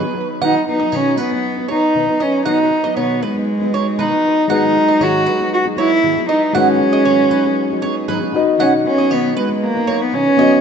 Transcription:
Already playing: F#3 B4
0.03 F#3 B3 D#4 G#4
0.15 F#3 B3 D#4 B4
0.41 B2 D#3 F#3 B3 D#4 B4 F#5
0.54 F#3 B3 D#4 B4
0.67 F#3 B3 D#4 B4
0.79 F#3 B3 D#4 B4 D#5
0.92 B2 D#3 F#3 B3 C#4 D#4 B4 C#5
1.17 F#3 B3 D#4 B4
1.31 F#3 B3 D#4 B4
1.57 F#3 B3 D#4 B4
1.68 F#3 B3 D#4 C#5
1.72 B4
1.95 B2 D#3 F#3 B3 D#4 B4
2.07 F#3 B3 D#4 B4
2.20 F#3 B3 C#4 D#4 B4 D#5
2.45 B2 D#3 F#3 B3 D#4 B4 F#5
2.71 F#3 B3 D#4 B4
2.83 F#3 B3 D#4 B4 D#5
2.97 B2 D#3 F#3 B3 D#4 B4 C#5
3.22 F#3 G#3 B3 D#4 B4
3.35 F#3 B3 D#4 B4
3.60 F#3 B3 D#4 B4
3.72 F#3 B3 D#4 B4 C#5
3.98 B2 D#3 F#3 B3 D#4 B4
4.11 F#3 B3 D#4 B4
4.24 F#3 B3 D#4 B4
4.48 G#2 D#3 F#3 G#3 B3 D#4 F#4 G#4 B4 F#5
4.52 D#4
4.75 F#3 B3 D#4 G#4
4.88 F#3 B3 D#4 G#4 D#5
5.00 G#2 D#3 F#3 B3 D#4 F#4 G#4 C#5
5.26 F#3 B3 D#4 G#4 B4
5.39 F#3 B3 D#4 G#4
5.53 F#4
5.64 F#3 B3 D#4 G#4
5.76 F#3 B3 D#4 E4 G#4 C#5
6.03 G#2 D#3 F#3 B3 D#4 G#4
6.15 F#3 B3 D#4 G#4
6.28 F#3 B3 D#4 G#4 D#5
6.53 G#2 D#3 F#3 G#3 B3 C#4 D#4 F#4 G#4 F#5
6.57 B4
6.80 F#3 B3 D#4 G#4
6.93 F#3 B3 D#4 G#4 D#5
7.05 G#2 D#3 F#3 B3 D#4 G#4 C#5
7.31 F#3 B3 D#4 G#4 B4
7.44 F#3 B3 D#4 G#4
7.70 F#3 B3 D#4 G#4
7.82 F#3 B3 D#4 G#4 C#5
8.07 G#2 D#3 F#3 B3 D#4 G#4 B4
8.21 F#3 B3 D#4 G#4
8.32 F#3 B3 D#4 F#4 B4 D#5
8.57 B2 D#3 F#3 B3 C#4 D#4 B4 F#5
8.84 F#3 B3 C#4 D#4 B4
8.96 F#3 B3 D#4 B4 D#5
9.09 B2 D#3 F#3 B3 D#4 B4 C#5
9.35 F#3 G#3 B3 D#4 B4
9.49 F#3 B3 D#4 B4
9.63 A#3
9.74 F#3 B3 D#4 B4
9.87 F#3 B3 D#4 B4 C#5
10.01 B3
10.13 B2 D#3 F#3 B3 C#4 D#4 B4
10.26 F#3 B3 D#4 B4
10.37 F#3 B3 F#4 D#5
10.41 D#4 B4 D#5

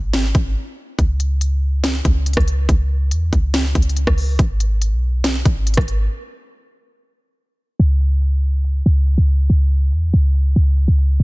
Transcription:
Already playing: G#1
0.13 snare, closed hi-hat
0.35 G#1, kick, closed hi-hat
0.99 C#2, kick, closed hi-hat
1.20 closed hi-hat
1.41 closed hi-hat
1.84 snare, closed hi-hat
2.05 C#2, kick, closed hi-hat
2.26 closed hi-hat
2.33 C#2, kick, cross-stick, closed hi-hat
2.40 closed hi-hat
2.48 closed hi-hat
2.69 C#2, kick, closed hi-hat
3.11 E2, closed hi-hat
3.33 C#2, kick, closed hi-hat
3.54 snare, closed hi-hat
3.75 C#2, kick, closed hi-hat
3.82 closed hi-hat
3.89 closed hi-hat
3.97 closed hi-hat
4.07 C#2, kick, cross-stick
4.18 open hi-hat
4.39 G#1, kick, closed hi-hat
4.60 closed hi-hat
4.82 closed hi-hat
4.92 B1
5.24 snare, closed hi-hat
5.45 G#1, kick, closed hi-hat
5.67 closed hi-hat
5.74 G#1, kick, cross-stick, closed hi-hat
5.81 closed hi-hat
5.88 closed hi-hat
7.79 C#2, closed hi-hat
8.01 closed hi-hat
8.22 closed hi-hat
8.65 closed hi-hat
8.86 C#2, closed hi-hat
9.07 closed hi-hat
9.14 C#2, closed hi-hat
9.21 closed hi-hat
9.28 closed hi-hat
9.50 C#2, closed hi-hat
9.92 E2, closed hi-hat
10.13 C#2, closed hi-hat
10.35 closed hi-hat
10.56 C#2, closed hi-hat
10.63 closed hi-hat
10.70 closed hi-hat
10.77 closed hi-hat
10.88 C#2
10.99 closed hi-hat
11.20 G#1, closed hi-hat

